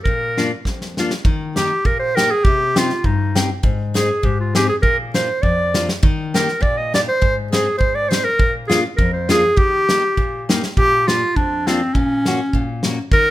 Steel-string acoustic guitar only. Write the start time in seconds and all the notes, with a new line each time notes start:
0.07 A#2
0.38 A#3 D4 F4
0.67 F2
0.99 A#3 D4 F4
1.25 D#3
1.57 A#3 D#4 G4
1.85 A#2
2.17 A#3 D#4 G4
2.46 C3
2.76 C4 D#4 G4
3.04 G2
3.35 C4 D#4 G4
3.63 G#2
3.94 C4 D#4 G#4
4.23 G#2
4.55 C4 D#4 G#4
4.83 A#2
5.14 A#3 D4 F4
5.43 F2
5.74 A#3 D4 F4
6.03 D#3
6.34 A#3 D#4 G4
6.61 A#2
6.94 A#3 D#4 G4
7.21 G#2
7.52 C4 D#4 G#4
7.79 G#2
8.11 C4 D#4 G#4
8.39 A#2
8.69 A#3 D4 F4
8.99 F2
9.29 A#3 D4 F4
9.56 D#3
9.90 A#3 D#4 G4
10.18 A#2
10.49 A#3 D#4 G4
10.77 A#2
11.08 A#3 D4 F4
11.37 F2
11.67 A#3 D4 F4
11.96 A#2
12.27 A#3 C#4 F#4
12.54 A#2
12.85 A#3 C#4 F#4
13.13 D#3